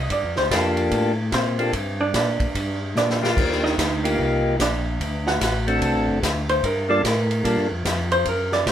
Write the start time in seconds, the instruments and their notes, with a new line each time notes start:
Already playing: hollow-body jazz guitar D#5
0.10 tonewheel organ G2, hollow-body jazz guitar D5, kick, ride
0.24 tonewheel organ F2
0.36 tonewheel organ D2, hollow-body jazz guitar C5, snare
0.51 tonewheel organ F2 A#3 D4 F4 G4 A4, kick, snare, hi-hat pedal, ride
0.77 ride
0.91 tonewheel organ A2, kick, ride
1.32 tonewheel organ A#2, hollow-body jazz guitar C4 C5, kick, snare, hi-hat pedal, ride
1.59 tonewheel organ A#3 D4 F4 G4 A4, ride
1.73 tonewheel organ G2, kick, ride
2.01 hollow-body jazz guitar D4 D5
2.14 tonewheel organ A#2, hollow-body jazz guitar D4 D5, kick, snare, hi-hat pedal, ride
2.40 tonewheel organ A#2, kick, ride
2.55 tonewheel organ G2, kick, ride
2.95 tonewheel organ A#2, hollow-body jazz guitar D4 D5, snare, hi-hat pedal
3.10 snare
3.22 tonewheel organ A#3 D4 F4 G4, snare
3.37 tonewheel organ D#2, kick, crash
3.52 snare
3.64 hollow-body jazz guitar D#4 D#5, snare
3.78 tonewheel organ D2, hollow-body jazz guitar D#4 D#5, kick, snare, hi-hat pedal, ride
4.03 tonewheel organ A#3 D#4 F4 G4, ride
4.19 tonewheel organ C2, kick
4.59 tonewheel organ A#1, hollow-body jazz guitar D4 D5, kick, snare, hi-hat pedal, ride
5.00 tonewheel organ D2, kick, ride
5.27 hollow-body jazz guitar F#4 F#5, snare
5.41 tonewheel organ A1, hollow-body jazz guitar F#4 F#5, kick, snare, hi-hat pedal, ride
5.67 tonewheel organ A3 C4 D4 F#4 A4, ride
5.81 tonewheel organ C2, kick, ride
5.95 tonewheel organ A1
6.08 tonewheel organ F#1
6.22 tonewheel organ D2, kick, snare, hi-hat pedal, ride
6.49 hollow-body jazz guitar C5, ride
6.63 tonewheel organ G2, hollow-body jazz guitar A#4, kick, ride
6.88 tonewheel organ G3 A#3 D4 F4 A4, hollow-body jazz guitar D5
7.04 tonewheel organ A2, hollow-body jazz guitar A#4, kick, snare, hi-hat pedal, ride
7.31 ride
7.44 tonewheel organ A#2 G3 A#3 D4 F4 A4, kick, ride
7.57 tonewheel organ G2
7.71 tonewheel organ F2
7.85 tonewheel organ F2, kick, snare, hi-hat pedal, ride
8.12 hollow-body jazz guitar C5, ride
8.25 tonewheel organ F#2, hollow-body jazz guitar A#4, kick, ride
8.52 hollow-body jazz guitar D5, snare
8.66 tonewheel organ A2, kick, snare, hi-hat pedal, ride